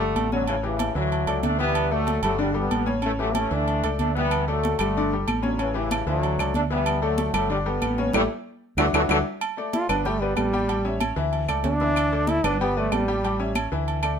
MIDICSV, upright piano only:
0, 0, Header, 1, 2, 480
1, 0, Start_track
1, 0, Key_signature, 2, "major"
1, 0, Tempo, 318979
1, 716, Time_signature, 4, 2, 24, 8
1, 21359, End_track
2, 0, Start_track
2, 0, Title_t, "Upright piano"
2, 0, Program_c, 0, 0
2, 0, Note_on_c, 0, 55, 68
2, 0, Note_on_c, 0, 67, 69
2, 12, Note_on_c, 0, 69, 75
2, 389, Note_off_c, 0, 67, 0
2, 390, Note_off_c, 0, 55, 0
2, 399, Note_off_c, 0, 69, 0
2, 486, Note_on_c, 0, 49, 77
2, 488, Note_on_c, 0, 61, 93
2, 498, Note_on_c, 0, 73, 82
2, 679, Note_off_c, 0, 49, 0
2, 680, Note_off_c, 0, 61, 0
2, 686, Note_off_c, 0, 73, 0
2, 719, Note_on_c, 0, 49, 79
2, 720, Note_on_c, 0, 61, 77
2, 734, Note_on_c, 0, 73, 78
2, 915, Note_off_c, 0, 49, 0
2, 915, Note_off_c, 0, 61, 0
2, 923, Note_off_c, 0, 73, 0
2, 951, Note_on_c, 0, 52, 77
2, 959, Note_on_c, 0, 67, 78
2, 961, Note_on_c, 0, 64, 80
2, 1348, Note_off_c, 0, 52, 0
2, 1352, Note_off_c, 0, 67, 0
2, 1353, Note_off_c, 0, 64, 0
2, 1430, Note_on_c, 0, 52, 81
2, 1444, Note_on_c, 0, 76, 87
2, 1446, Note_on_c, 0, 64, 88
2, 1827, Note_off_c, 0, 52, 0
2, 1836, Note_off_c, 0, 64, 0
2, 1836, Note_off_c, 0, 76, 0
2, 1917, Note_on_c, 0, 69, 66
2, 1921, Note_on_c, 0, 57, 76
2, 1927, Note_on_c, 0, 74, 70
2, 2312, Note_off_c, 0, 69, 0
2, 2314, Note_off_c, 0, 57, 0
2, 2318, Note_off_c, 0, 74, 0
2, 2386, Note_on_c, 0, 52, 87
2, 2394, Note_on_c, 0, 64, 86
2, 2404, Note_on_c, 0, 76, 94
2, 2786, Note_off_c, 0, 52, 0
2, 2790, Note_off_c, 0, 64, 0
2, 2797, Note_off_c, 0, 76, 0
2, 2874, Note_on_c, 0, 57, 82
2, 2882, Note_on_c, 0, 69, 76
2, 2883, Note_on_c, 0, 74, 75
2, 3271, Note_off_c, 0, 57, 0
2, 3276, Note_off_c, 0, 69, 0
2, 3276, Note_off_c, 0, 74, 0
2, 3369, Note_on_c, 0, 67, 73
2, 3370, Note_on_c, 0, 55, 79
2, 3376, Note_on_c, 0, 69, 75
2, 3563, Note_off_c, 0, 55, 0
2, 3563, Note_off_c, 0, 67, 0
2, 3567, Note_off_c, 0, 69, 0
2, 3588, Note_on_c, 0, 62, 92
2, 3590, Note_on_c, 0, 50, 84
2, 3594, Note_on_c, 0, 74, 88
2, 3791, Note_off_c, 0, 62, 0
2, 3792, Note_off_c, 0, 50, 0
2, 3794, Note_off_c, 0, 74, 0
2, 3826, Note_on_c, 0, 55, 74
2, 3828, Note_on_c, 0, 67, 75
2, 3829, Note_on_c, 0, 69, 78
2, 4227, Note_off_c, 0, 55, 0
2, 4228, Note_off_c, 0, 67, 0
2, 4229, Note_off_c, 0, 69, 0
2, 4303, Note_on_c, 0, 61, 90
2, 4309, Note_on_c, 0, 49, 89
2, 4312, Note_on_c, 0, 73, 79
2, 4509, Note_off_c, 0, 61, 0
2, 4512, Note_off_c, 0, 49, 0
2, 4514, Note_off_c, 0, 73, 0
2, 4538, Note_on_c, 0, 49, 72
2, 4547, Note_on_c, 0, 61, 84
2, 4551, Note_on_c, 0, 73, 80
2, 4746, Note_off_c, 0, 49, 0
2, 4751, Note_off_c, 0, 61, 0
2, 4753, Note_off_c, 0, 73, 0
2, 4800, Note_on_c, 0, 52, 82
2, 4811, Note_on_c, 0, 64, 76
2, 4813, Note_on_c, 0, 67, 81
2, 5196, Note_off_c, 0, 52, 0
2, 5203, Note_off_c, 0, 64, 0
2, 5204, Note_off_c, 0, 67, 0
2, 5275, Note_on_c, 0, 64, 89
2, 5281, Note_on_c, 0, 52, 80
2, 5285, Note_on_c, 0, 76, 83
2, 5674, Note_off_c, 0, 64, 0
2, 5677, Note_off_c, 0, 52, 0
2, 5679, Note_off_c, 0, 76, 0
2, 5773, Note_on_c, 0, 57, 72
2, 5782, Note_on_c, 0, 69, 74
2, 5783, Note_on_c, 0, 74, 77
2, 6165, Note_off_c, 0, 57, 0
2, 6170, Note_off_c, 0, 69, 0
2, 6171, Note_off_c, 0, 74, 0
2, 6266, Note_on_c, 0, 64, 76
2, 6270, Note_on_c, 0, 52, 86
2, 6271, Note_on_c, 0, 76, 85
2, 6653, Note_off_c, 0, 64, 0
2, 6655, Note_off_c, 0, 52, 0
2, 6656, Note_off_c, 0, 76, 0
2, 6736, Note_on_c, 0, 57, 82
2, 6743, Note_on_c, 0, 69, 80
2, 6745, Note_on_c, 0, 74, 76
2, 7127, Note_off_c, 0, 57, 0
2, 7131, Note_off_c, 0, 69, 0
2, 7133, Note_off_c, 0, 74, 0
2, 7216, Note_on_c, 0, 55, 74
2, 7222, Note_on_c, 0, 67, 68
2, 7224, Note_on_c, 0, 69, 72
2, 7410, Note_off_c, 0, 55, 0
2, 7414, Note_off_c, 0, 67, 0
2, 7416, Note_off_c, 0, 69, 0
2, 7477, Note_on_c, 0, 62, 83
2, 7484, Note_on_c, 0, 50, 90
2, 7486, Note_on_c, 0, 74, 94
2, 7663, Note_off_c, 0, 62, 0
2, 7667, Note_off_c, 0, 50, 0
2, 7668, Note_off_c, 0, 74, 0
2, 7714, Note_on_c, 0, 55, 67
2, 7719, Note_on_c, 0, 67, 73
2, 7728, Note_on_c, 0, 69, 72
2, 8099, Note_off_c, 0, 55, 0
2, 8102, Note_off_c, 0, 67, 0
2, 8107, Note_off_c, 0, 69, 0
2, 8158, Note_on_c, 0, 49, 83
2, 8165, Note_on_c, 0, 61, 89
2, 8172, Note_on_c, 0, 73, 87
2, 8360, Note_off_c, 0, 49, 0
2, 8365, Note_off_c, 0, 61, 0
2, 8369, Note_off_c, 0, 73, 0
2, 8400, Note_on_c, 0, 49, 86
2, 8410, Note_on_c, 0, 61, 80
2, 8412, Note_on_c, 0, 73, 81
2, 8602, Note_off_c, 0, 49, 0
2, 8608, Note_off_c, 0, 61, 0
2, 8609, Note_off_c, 0, 73, 0
2, 8640, Note_on_c, 0, 52, 86
2, 8653, Note_on_c, 0, 64, 79
2, 8659, Note_on_c, 0, 67, 81
2, 9039, Note_off_c, 0, 52, 0
2, 9047, Note_off_c, 0, 64, 0
2, 9050, Note_off_c, 0, 67, 0
2, 9132, Note_on_c, 0, 52, 86
2, 9135, Note_on_c, 0, 76, 91
2, 9140, Note_on_c, 0, 64, 79
2, 9526, Note_off_c, 0, 52, 0
2, 9528, Note_off_c, 0, 76, 0
2, 9531, Note_off_c, 0, 64, 0
2, 9616, Note_on_c, 0, 57, 66
2, 9624, Note_on_c, 0, 69, 71
2, 9626, Note_on_c, 0, 74, 73
2, 10008, Note_off_c, 0, 57, 0
2, 10014, Note_off_c, 0, 69, 0
2, 10014, Note_off_c, 0, 74, 0
2, 10089, Note_on_c, 0, 52, 89
2, 10091, Note_on_c, 0, 64, 83
2, 10099, Note_on_c, 0, 76, 87
2, 10485, Note_off_c, 0, 52, 0
2, 10486, Note_off_c, 0, 64, 0
2, 10491, Note_off_c, 0, 76, 0
2, 10563, Note_on_c, 0, 57, 80
2, 10569, Note_on_c, 0, 69, 83
2, 10571, Note_on_c, 0, 74, 75
2, 10961, Note_off_c, 0, 57, 0
2, 10964, Note_off_c, 0, 69, 0
2, 10966, Note_off_c, 0, 74, 0
2, 11043, Note_on_c, 0, 55, 78
2, 11043, Note_on_c, 0, 67, 71
2, 11056, Note_on_c, 0, 69, 72
2, 11244, Note_off_c, 0, 55, 0
2, 11244, Note_off_c, 0, 67, 0
2, 11252, Note_off_c, 0, 69, 0
2, 11281, Note_on_c, 0, 50, 80
2, 11282, Note_on_c, 0, 62, 88
2, 11291, Note_on_c, 0, 74, 87
2, 11483, Note_off_c, 0, 50, 0
2, 11484, Note_off_c, 0, 62, 0
2, 11489, Note_off_c, 0, 74, 0
2, 11525, Note_on_c, 0, 69, 78
2, 11526, Note_on_c, 0, 55, 74
2, 11527, Note_on_c, 0, 67, 81
2, 11922, Note_off_c, 0, 69, 0
2, 11923, Note_off_c, 0, 55, 0
2, 11923, Note_off_c, 0, 67, 0
2, 12004, Note_on_c, 0, 49, 90
2, 12011, Note_on_c, 0, 61, 89
2, 12021, Note_on_c, 0, 73, 90
2, 12205, Note_off_c, 0, 49, 0
2, 12209, Note_off_c, 0, 61, 0
2, 12215, Note_off_c, 0, 73, 0
2, 12243, Note_on_c, 0, 64, 88
2, 12249, Note_on_c, 0, 67, 82
2, 12254, Note_on_c, 0, 69, 86
2, 12401, Note_off_c, 0, 64, 0
2, 12404, Note_off_c, 0, 67, 0
2, 12407, Note_off_c, 0, 69, 0
2, 13215, Note_on_c, 0, 62, 103
2, 13215, Note_on_c, 0, 66, 100
2, 13218, Note_on_c, 0, 64, 98
2, 13368, Note_off_c, 0, 62, 0
2, 13368, Note_off_c, 0, 66, 0
2, 13369, Note_off_c, 0, 64, 0
2, 13456, Note_on_c, 0, 64, 92
2, 13458, Note_on_c, 0, 62, 87
2, 13465, Note_on_c, 0, 66, 91
2, 13609, Note_off_c, 0, 64, 0
2, 13610, Note_off_c, 0, 62, 0
2, 13613, Note_off_c, 0, 66, 0
2, 13680, Note_on_c, 0, 66, 92
2, 13685, Note_on_c, 0, 62, 93
2, 13687, Note_on_c, 0, 64, 93
2, 13838, Note_off_c, 0, 66, 0
2, 13842, Note_off_c, 0, 62, 0
2, 13843, Note_off_c, 0, 64, 0
2, 14404, Note_on_c, 0, 57, 73
2, 14414, Note_on_c, 0, 69, 72
2, 14418, Note_on_c, 0, 74, 81
2, 14800, Note_off_c, 0, 57, 0
2, 14806, Note_off_c, 0, 69, 0
2, 14808, Note_off_c, 0, 74, 0
2, 14881, Note_on_c, 0, 59, 82
2, 14886, Note_on_c, 0, 71, 80
2, 14890, Note_on_c, 0, 74, 82
2, 15082, Note_off_c, 0, 59, 0
2, 15085, Note_off_c, 0, 71, 0
2, 15087, Note_off_c, 0, 74, 0
2, 15133, Note_on_c, 0, 55, 95
2, 15134, Note_on_c, 0, 67, 95
2, 15141, Note_on_c, 0, 79, 91
2, 15329, Note_off_c, 0, 55, 0
2, 15329, Note_off_c, 0, 67, 0
2, 15333, Note_off_c, 0, 79, 0
2, 15374, Note_on_c, 0, 59, 77
2, 15377, Note_on_c, 0, 71, 76
2, 15385, Note_on_c, 0, 74, 70
2, 15766, Note_off_c, 0, 59, 0
2, 15767, Note_off_c, 0, 71, 0
2, 15772, Note_off_c, 0, 74, 0
2, 15848, Note_on_c, 0, 55, 89
2, 15852, Note_on_c, 0, 67, 86
2, 15856, Note_on_c, 0, 79, 94
2, 16045, Note_off_c, 0, 55, 0
2, 16048, Note_off_c, 0, 67, 0
2, 16050, Note_off_c, 0, 79, 0
2, 16080, Note_on_c, 0, 55, 80
2, 16093, Note_on_c, 0, 79, 75
2, 16095, Note_on_c, 0, 67, 71
2, 16280, Note_off_c, 0, 55, 0
2, 16288, Note_off_c, 0, 79, 0
2, 16289, Note_off_c, 0, 67, 0
2, 16322, Note_on_c, 0, 73, 83
2, 16323, Note_on_c, 0, 61, 77
2, 16331, Note_on_c, 0, 76, 86
2, 16717, Note_off_c, 0, 73, 0
2, 16718, Note_off_c, 0, 61, 0
2, 16723, Note_off_c, 0, 76, 0
2, 16798, Note_on_c, 0, 52, 93
2, 16799, Note_on_c, 0, 64, 87
2, 16803, Note_on_c, 0, 76, 84
2, 17195, Note_off_c, 0, 52, 0
2, 17196, Note_off_c, 0, 64, 0
2, 17198, Note_off_c, 0, 76, 0
2, 17281, Note_on_c, 0, 57, 73
2, 17285, Note_on_c, 0, 69, 72
2, 17286, Note_on_c, 0, 74, 71
2, 17676, Note_off_c, 0, 57, 0
2, 17679, Note_off_c, 0, 69, 0
2, 17679, Note_off_c, 0, 74, 0
2, 17768, Note_on_c, 0, 64, 87
2, 17773, Note_on_c, 0, 76, 83
2, 17774, Note_on_c, 0, 52, 85
2, 18160, Note_off_c, 0, 64, 0
2, 18162, Note_off_c, 0, 76, 0
2, 18164, Note_off_c, 0, 52, 0
2, 18244, Note_on_c, 0, 57, 76
2, 18247, Note_on_c, 0, 69, 83
2, 18254, Note_on_c, 0, 74, 80
2, 18637, Note_off_c, 0, 57, 0
2, 18638, Note_off_c, 0, 69, 0
2, 18643, Note_off_c, 0, 74, 0
2, 18728, Note_on_c, 0, 71, 78
2, 18729, Note_on_c, 0, 59, 77
2, 18745, Note_on_c, 0, 74, 79
2, 18923, Note_off_c, 0, 59, 0
2, 18923, Note_off_c, 0, 71, 0
2, 18932, Note_off_c, 0, 74, 0
2, 18976, Note_on_c, 0, 55, 91
2, 18976, Note_on_c, 0, 79, 90
2, 18979, Note_on_c, 0, 67, 94
2, 19167, Note_off_c, 0, 55, 0
2, 19167, Note_off_c, 0, 79, 0
2, 19169, Note_off_c, 0, 67, 0
2, 19215, Note_on_c, 0, 71, 70
2, 19219, Note_on_c, 0, 59, 73
2, 19222, Note_on_c, 0, 74, 80
2, 19603, Note_off_c, 0, 71, 0
2, 19605, Note_off_c, 0, 59, 0
2, 19606, Note_off_c, 0, 74, 0
2, 19681, Note_on_c, 0, 55, 85
2, 19686, Note_on_c, 0, 67, 91
2, 19686, Note_on_c, 0, 79, 88
2, 19878, Note_off_c, 0, 55, 0
2, 19880, Note_off_c, 0, 67, 0
2, 19880, Note_off_c, 0, 79, 0
2, 19924, Note_on_c, 0, 55, 80
2, 19935, Note_on_c, 0, 79, 72
2, 19936, Note_on_c, 0, 67, 79
2, 20119, Note_off_c, 0, 55, 0
2, 20126, Note_off_c, 0, 67, 0
2, 20126, Note_off_c, 0, 79, 0
2, 20155, Note_on_c, 0, 61, 81
2, 20159, Note_on_c, 0, 73, 78
2, 20164, Note_on_c, 0, 76, 84
2, 20550, Note_off_c, 0, 61, 0
2, 20552, Note_off_c, 0, 73, 0
2, 20555, Note_off_c, 0, 76, 0
2, 20643, Note_on_c, 0, 52, 85
2, 20651, Note_on_c, 0, 64, 85
2, 20651, Note_on_c, 0, 76, 81
2, 21034, Note_off_c, 0, 52, 0
2, 21038, Note_off_c, 0, 64, 0
2, 21039, Note_off_c, 0, 76, 0
2, 21115, Note_on_c, 0, 57, 74
2, 21116, Note_on_c, 0, 69, 66
2, 21127, Note_on_c, 0, 74, 66
2, 21359, Note_off_c, 0, 57, 0
2, 21359, Note_off_c, 0, 69, 0
2, 21359, Note_off_c, 0, 74, 0
2, 21359, End_track
0, 0, End_of_file